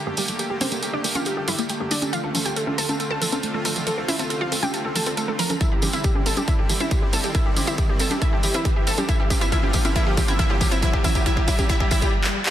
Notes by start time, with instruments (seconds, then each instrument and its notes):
Already playing: supersaw synth D3 A3 A#3 G4, riser
0.06 analog synth bass G2, synth arpeggio sound A3, synth pluck G4
0.17 analog synth bass G1, synth arpeggio sound G3, synth pluck G4, open hi-hat, tambourine
0.28 analog synth bass G1, synth arpeggio sound G3, closed hi-hat, tambourine
0.39 synth arpeggio sound G3, synth pluck G4, closed hi-hat, tambourine
0.50 analog synth bass G1, synth pluck G4
0.61 analog synth bass G1, synth arpeggio sound G3, synth pluck C4 C5, open hi-hat, tambourine, high conga
0.71 analog synth bass G1, synth arpeggio sound A#3, synth pluck G4, closed hi-hat, tambourine
0.83 synth pluck G4, synth arpeggio sound A4, closed hi-hat, tambourine
0.93 analog synth bass G1, synth pluck D4 D5
1.04 analog synth bass G1, synth arpeggio sound A#3, synth pluck G4, open hi-hat, tambourine
1.15 analog synth bass G1, synth arpeggio sound A3, synth pluck F4 F5, closed hi-hat, tambourine, high conga
1.25 synth pluck G4, closed hi-hat, tambourine
1.37 analog synth bass G1, synth pluck G4
1.48 analog synth bass G2, synth arpeggio sound G3, synth pluck E4 E5, open hi-hat, tambourine
1.58 analog synth bass G1, synth arpeggio sound A#3, synth pluck G4, closed hi-hat, tambourine
1.69 synth arpeggio sound A3, synth pluck G4, closed hi-hat, tambourine
1.80 analog synth bass G2, synth arpeggio sound A3, synth pluck G4
1.91 analog synth bass G1, synth arpeggio sound G3, synth pluck D4 D5, open hi-hat, tambourine
2.02 analog synth bass G1, synth arpeggio sound G3, synth pluck G4, closed hi-hat, tambourine, high conga
2.13 synth arpeggio sound F3, supersaw synth C4 F4, synth pluck F4 F5, closed hi-hat, tambourine
2.24 analog synth bass D2, synth pluck A4
2.35 analog synth bass D2, synth arpeggio sound F3, synth pluck A4, open hi-hat, tambourine, high conga
2.45 analog synth bass D2, synth arpeggio sound C4, synth pluck G4 G5, closed hi-hat, tambourine
2.56 synth arpeggio sound A4, synth pluck A4, closed hi-hat, tambourine
2.67 analog synth bass D2, synth pluck A4, high conga
2.78 analog synth bass D2, synth arpeggio sound C4, synth pluck A4 A5, open hi-hat, tambourine
2.89 analog synth bass D2, synth arpeggio sound A3, synth pluck A4, closed hi-hat, tambourine, high conga
3.00 synth pluck A4, closed hi-hat, tambourine
3.11 analog synth bass D2, synth pluck A4 A5
3.22 analog synth bass D1, synth arpeggio sound F3, synth pluck A4, open hi-hat, tambourine
3.32 analog synth bass D2, synth arpeggio sound C4, synth pluck A4, closed hi-hat, tambourine, high conga
3.43 synth arpeggio sound A3, closed hi-hat, tambourine
3.54 analog synth bass D1, synth arpeggio sound A3, synth pluck A4
3.65 analog synth bass D2, synth arpeggio sound F3, synth pluck A4, open hi-hat, tambourine
3.76 analog synth bass D2, synth arpeggio sound F3, closed hi-hat, tambourine
3.87 synth arpeggio sound F3, synth pluck A4, closed hi-hat, tambourine
3.98 analog synth bass D2, synth pluck A4
4.08 analog synth bass D2, synth arpeggio sound F3, synth pluck E4 E5, open hi-hat, tambourine, high conga
4.19 analog synth bass D2, synth arpeggio sound C4, synth pluck A4, closed hi-hat, tambourine
4.30 synth pluck A4, synth arpeggio sound A4, closed hi-hat, tambourine
4.41 analog synth bass D2, synth pluck F4 F5
4.52 analog synth bass D2, synth arpeggio sound C4, synth pluck A4, open hi-hat, tambourine
4.63 analog synth bass D2, synth arpeggio sound A3, synth pluck G4 G5, closed hi-hat, tambourine, high conga
4.74 synth pluck A4, closed hi-hat, tambourine
4.85 analog synth bass D2, synth pluck A4
4.95 analog synth bass D1, synth arpeggio sound F3, synth pluck A4 A5, open hi-hat, tambourine
5.06 analog synth bass D2, synth arpeggio sound C4, synth pluck A4, closed hi-hat, tambourine
5.17 synth arpeggio sound A3, synth pluck A4, closed hi-hat, tambourine
5.28 analog synth bass D1, synth arpeggio sound A3, synth pluck A4
5.39 analog synth bass D2, synth arpeggio sound F3, synth pluck A#4 A#5, open hi-hat, tambourine
5.50 analog synth bass D2, synth arpeggio sound F3, synth pluck A4, closed hi-hat, tambourine, high conga
5.61 synth arpeggio sound E3, supersaw synth G3 C4 E4, synth pluck E4 E5, kick, closed hi-hat, tambourine
5.72 analog synth bass C2, synth pluck G4
5.82 analog synth bass C2, synth arpeggio sound E3, synth pluck G4, open hi-hat, tambourine, high conga
5.93 analog synth bass C2, synth arpeggio sound C4, synth pluck E4 E5, closed hi-hat, tambourine
6.04 synth pluck G4, synth arpeggio sound G4, kick, closed hi-hat, tambourine
6.15 analog synth bass C2, synth pluck G4, high conga
6.26 analog synth bass C2, synth arpeggio sound C4, synth pluck A4 A5, open hi-hat, tambourine
6.37 analog synth bass C2, synth arpeggio sound G3, synth pluck G4, closed hi-hat, tambourine, high conga
6.48 synth arpeggio sound E3, synth pluck E4 E5, kick, closed hi-hat, tambourine
6.59 analog synth bass C2, synth pluck G4
6.69 analog synth bass G1, synth arpeggio sound E3, synth pluck G4, open hi-hat, tambourine
6.80 analog synth bass C2, synth arpeggio sound C4, synth pluck E4 E5, closed hi-hat, tambourine, high conga
6.91 synth arpeggio sound G4, synth pluck G4, kick, closed hi-hat, tambourine
7.02 analog synth bass G1, synth pluck G4
7.13 analog synth bass C2, synth arpeggio sound C4, synth pluck A4 A5, open hi-hat, tambourine
7.24 analog synth bass C2, synth arpeggio sound G3, synth pluck G4, closed hi-hat, tambourine
7.35 synth arpeggio sound E3, synth pluck E4 E5, kick, closed hi-hat, tambourine
7.46 analog synth bass C2, synth pluck G4
7.56 analog synth bass C2, synth arpeggio sound E3, synth pluck G4, open hi-hat, tambourine, high conga
7.67 analog synth bass C2, synth arpeggio sound C4, synth pluck E4 E5, closed hi-hat, tambourine
7.78 synth arpeggio sound G4, synth pluck G4, kick, closed hi-hat, tambourine
7.89 analog synth bass C2, synth pluck G4
7.99 analog synth bass C2, synth arpeggio sound C4, synth pluck A4 A5, open hi-hat, tambourine
8.11 analog synth bass C2, synth arpeggio sound G3, synth pluck G4, closed hi-hat, tambourine, high conga
8.22 synth arpeggio sound E3, synth pluck E4 E5, kick, closed hi-hat, tambourine
8.33 analog synth bass C2, synth pluck G4
8.43 analog synth bass G1, synth arpeggio sound E3, synth pluck G4, open hi-hat, tambourine
8.54 analog synth bass C2, synth arpeggio sound C4, synth pluck E4 E5, closed hi-hat, tambourine
8.65 synth arpeggio sound G4, synth pluck G4, kick, closed hi-hat, tambourine
8.76 analog synth bass G1, synth pluck G4
8.87 analog synth bass C2, synth arpeggio sound C4, synth pluck A4 A5, open hi-hat, tambourine
8.97 analog synth bass C2, synth arpeggio sound G3, synth pluck G4, closed hi-hat, tambourine, high conga
9.09 supersaw synth D3 F3 A#3 F4, synth arpeggio sound E3, synth pluck E4 E5, kick, closed hi-hat, tambourine
9.19 analog synth bass A#1, synth pluck G4
9.30 analog synth bass A#1, synth arpeggio sound E3, synth pluck G4, kick, open hi-hat, tambourine, high conga
9.41 analog synth bass A#1, synth arpeggio sound C4, synth pluck E4 E5, closed hi-hat, tambourine
9.52 synth arpeggio sound E3, synth pluck E4 E5, kick, closed hi-hat, tambourine
9.63 analog synth bass A#1, synth pluck G4, high conga
9.73 analog synth bass A#1, synth arpeggio sound E3, synth pluck G4, kick, open hi-hat, tambourine
9.85 analog synth bass A#1, synth arpeggio sound C4, synth pluck E4 E5, closed hi-hat, tambourine, high conga
9.96 synth arpeggio sound E3, synth pluck E4 E5, kick, closed hi-hat, tambourine
10.07 analog synth bass A#1, synth pluck G4
10.17 analog synth bass A#2, synth arpeggio sound E3, synth pluck G4, kick, open hi-hat, tambourine
10.28 analog synth bass A#1, synth arpeggio sound C4, synth pluck E4 E5, closed hi-hat, tambourine, high conga
10.39 synth arpeggio sound E3, synth pluck E4 E5, kick, closed hi-hat, tambourine
10.50 analog synth bass A#2, synth pluck G4
10.61 analog synth bass A#1, synth arpeggio sound E3, synth pluck G4, kick, open hi-hat, tambourine
10.72 analog synth bass A#1, synth arpeggio sound C4, synth pluck E4 E5, closed hi-hat, tambourine
10.82 synth arpeggio sound E3, synth pluck E4 E5, kick, closed hi-hat, tambourine
10.93 analog synth bass A#1, synth pluck G4, kick
11.04 analog synth bass A#1, synth arpeggio sound E3, synth pluck E4 E5, kick, open hi-hat, tambourine, high conga
11.15 analog synth bass A#1, synth pluck G4, kick, closed hi-hat, tambourine
11.26 synth arpeggio sound E3, synth pluck E4 E5, kick, closed hi-hat, tambourine
11.37 analog synth bass A#1, synth pluck G4, kick
11.48 analog synth bass A#1, synth arpeggio sound E3, synth pluck E4 E5, kick, open hi-hat, tambourine
11.59 analog synth bass A#1, synth pluck G4, kick, closed hi-hat, tambourine, high conga
11.69 synth arpeggio sound E3, synth pluck E4 E5, kick, closed hi-hat, tambourine
11.80 analog synth bass A#1, synth pluck G4, kick
11.91 analog synth bass A#1, synth arpeggio sound E3, synth pluck E4 E5, kick, open hi-hat, tambourine
12.01 analog synth bass A#2, synth pluck G4, kick, closed hi-hat, tambourine
12.24 clap
12.46 clap